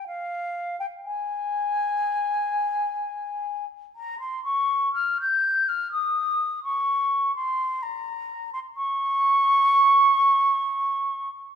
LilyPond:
\new Staff \with { instrumentName = "Flute" } { \time 4/4 \key des \lydian \tempo 4 = 62 f''8. g''16 aes''2~ aes''8. r16 | bes''16 c'''16 des'''8 f'''16 g'''8 f'''16 ees'''8. des'''8. c'''8 | bes''8. c'''16 des'''2~ des'''8. r16 | }